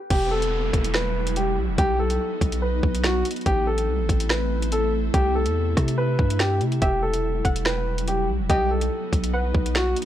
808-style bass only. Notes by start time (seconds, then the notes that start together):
0.10 E1
0.73 E1
1.57 B1
1.68 E1
1.78 B1
2.41 B1
2.83 B1
3.46 A1
3.88 C2
3.99 A1
4.09 A1
5.14 C2
5.46 E2
5.77 C3
6.19 G2
6.61 C3
6.82 E1
7.45 E1
8.29 B1
8.40 E1
8.50 B1
9.13 B1
9.55 B1